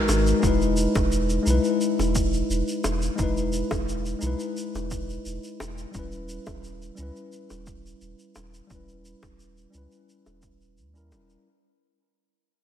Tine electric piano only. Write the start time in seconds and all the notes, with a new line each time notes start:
Already playing: G#3 D#4 F#4 A#4 B4
0.39 G#3 D#4
0.44 E4 B4
1.43 G#3 D#4
1.48 E4 B4
3.16 G#3 D#4
3.21 E4 B4
4.19 G#3 D#4
4.24 E4 B4
5.91 G3 C#4
5.96 E4 B4
6.95 G3 C#4
7.00 E4 B4
8.67 G3 C#4
8.72 E4 B4
9.70 G3 C#4
9.75 E4 B4
10.94 G3 C#4 E4 A#4